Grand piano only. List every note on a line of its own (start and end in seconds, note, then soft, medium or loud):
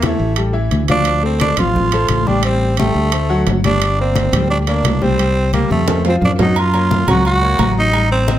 0.03 0.31 E3 medium
0.03 0.31 E4 medium
0.03 0.32 E5 medium
0.37 0.51 G3 medium
0.37 0.51 G4 medium
0.37 0.51 A4 medium
0.53 0.82 E3 medium
0.53 0.82 E4 medium
0.53 0.82 E5 medium
0.89 1.17 F3 medium
0.89 1.17 F4 medium
0.89 1.18 F5 medium
1.23 1.51 A3 medium
1.23 1.52 A4 medium
1.23 1.52 C5 medium
1.58 1.86 F3 medium
1.58 1.86 F4 medium
1.58 1.86 F5 medium
1.93 2.21 A3 medium
1.93 2.21 A4 medium
1.93 2.21 C5 medium
2.27 2.41 G3 medium
2.27 2.41 G4 medium
2.27 2.42 G5 medium
2.44 2.72 G3 medium
2.44 2.72 G4 medium
2.44 2.72 G5 medium
2.79 3.07 G3 medium
2.79 3.07 G4 medium
2.79 3.07 G5 medium
3.12 3.26 A3 medium
3.12 3.27 A4 medium
3.12 3.27 C5 medium
3.29 3.58 F#3 medium
3.29 3.58 F#4 medium
3.29 3.58 F#5 medium
3.64 3.92 G3 medium
3.64 3.92 G4 medium
3.64 3.93 G5 medium
3.99 4.27 A#3 medium
3.99 4.27 A#4 medium
3.99 4.28 D5 medium
4.32 4.61 G3 medium
4.32 4.61 G4 medium
4.32 4.61 G5 medium
4.67 4.95 A#3 medium
4.67 4.96 A#4 medium
4.67 4.95 D5 medium
5.01 5.16 G3 medium
5.01 5.16 G4 medium
5.01 5.16 G5 medium
5.19 5.47 G3 medium
5.19 5.47 G4 medium
5.19 5.47 G5 medium
5.54 5.82 G3 medium
5.54 5.82 G4 medium
5.54 5.82 G5 medium
5.88 6.02 A3 medium
5.88 6.02 A4 medium
5.88 6.02 C5 medium
6.06 6.33 F3 medium
6.06 6.34 F4 medium
6.06 6.34 F5 medium
6.39 6.53 F#3 medium
6.39 6.54 F#4 medium
6.39 6.54 F#5 medium
6.74 7.02 A#3 medium
6.74 7.02 A#4 medium
6.74 7.02 C#5 medium
7.08 7.36 F#3 medium
7.08 7.36 F#4 medium
7.08 7.36 F#5 medium
7.41 7.56 A#3 medium
7.41 7.56 A#4 medium
7.41 7.56 C#5 medium
7.58 7.87 F#3 medium
7.58 7.87 F#4 medium
7.58 7.87 F#5 medium
7.92 8.21 G3 medium
7.92 8.21 G4 medium
7.92 8.21 G5 medium
8.27 8.39 C4 medium
8.27 8.39 C5 medium
8.27 8.39 D#5 medium